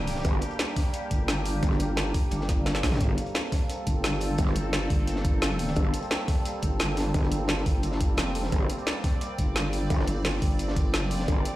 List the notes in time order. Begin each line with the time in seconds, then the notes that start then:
Already playing: G1 G3 A#3 D4 G4
0.07 open hi-hat
0.15 snare
0.25 G1, kick, closed hi-hat
0.41 closed hi-hat
0.51 closed hi-hat
0.59 snare, closed hi-hat
0.76 kick, snare, closed hi-hat, open hi-hat
0.93 closed hi-hat
1.11 G1, kick, closed hi-hat
1.28 snare, closed hi-hat
1.45 closed hi-hat, open hi-hat
1.63 G1, kick, closed hi-hat
1.71 snare
1.80 G1, closed hi-hat
1.97 snare, closed hi-hat
2.14 kick, closed hi-hat, open hi-hat
2.31 G1, closed hi-hat
2.41 snare
2.49 kick, snare, closed hi-hat
2.66 snare, closed hi-hat
2.75 snare
2.83 A#1, kick, snare, closed hi-hat, open hi-hat
2.92 snare, closed hi-hat, mid tom
2.95 snare, closed hi-hat
3.01 G1 C4 A4, kick, closed hi-hat
3.17 closed hi-hat
3.26 closed hi-hat
3.35 snare, closed hi-hat
3.52 kick, snare, closed hi-hat, open hi-hat
3.70 closed hi-hat
3.87 G1, kick, closed hi-hat
4.04 snare, closed hi-hat
4.21 closed hi-hat, open hi-hat
4.38 G1, kick, closed hi-hat
4.47 snare
4.55 G1, closed hi-hat
4.73 snare, closed hi-hat
4.90 G1, kick, closed hi-hat, open hi-hat
5.07 closed hi-hat
5.16 snare
5.24 kick, closed hi-hat
5.42 snare, closed hi-hat
5.59 open hi-hat
5.67 snare
5.76 G1, kick, closed hi-hat
5.94 closed hi-hat
6.02 closed hi-hat
6.11 snare, closed hi-hat
6.28 kick, snare, closed hi-hat, open hi-hat
6.45 closed hi-hat
6.62 G1, kick, closed hi-hat
6.79 snare, closed hi-hat
6.97 snare, closed hi-hat, open hi-hat
7.14 G1, kick, closed hi-hat
7.23 snare
7.31 G1, closed hi-hat
7.48 snare, closed hi-hat
7.66 G1, kick, closed hi-hat, open hi-hat
7.83 closed hi-hat
7.92 snare
8.01 kick, closed hi-hat
8.17 F1, snare, closed hi-hat
8.35 open hi-hat
8.43 snare
8.52 G1 D5, kick, closed hi-hat
8.69 closed hi-hat
8.78 closed hi-hat
8.87 snare, closed hi-hat
9.04 kick, snare, closed hi-hat, open hi-hat
9.21 closed hi-hat
9.38 G1, kick, closed hi-hat
9.56 snare, closed hi-hat
9.73 closed hi-hat, open hi-hat
9.90 G1, kick, closed hi-hat
10.00 snare
10.07 G1, closed hi-hat
10.25 snare, closed hi-hat
10.42 G1, kick, closed hi-hat, open hi-hat
10.59 closed hi-hat
10.68 snare
10.76 kick, closed hi-hat
10.94 snare, closed hi-hat
11.02 F#1
11.11 open hi-hat
11.20 snare
11.28 G1, kick, closed hi-hat
11.45 closed hi-hat